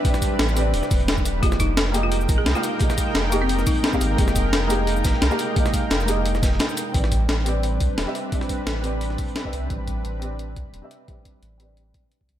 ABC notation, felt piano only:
X:1
M:4/4
L:1/16
Q:"Swing 16ths" 1/4=174
K:Flyd
V:1 name="Felt piano"
[CGBd]6 [CGBd]6- [CGBd] z3 | [_B,G_A_e]6 [B,GAe]6- [B,GAe] [B,GAf]3 | [_B,G_A_e]6 [B,GAe]6- [B,GAe] [B,GAf]3 | [_B,G_A_e]6 [B,GAe]6- [B,GAe] [B,GAf]3 |
[_B,G_A_e]6 [B,GAe]6- [B,GAe] z3 | [CGBd]6 [CGBd]6- [CGBd] [CGBe]3 | [CGBd]6 [CGBd]6- [CGBd] [CGBe]3 | [CGBd]6 [CGBd]6- [CGBd] [CGBe]3 |
[CGBd]6 [CGBd]6- [CGBd] z3 |]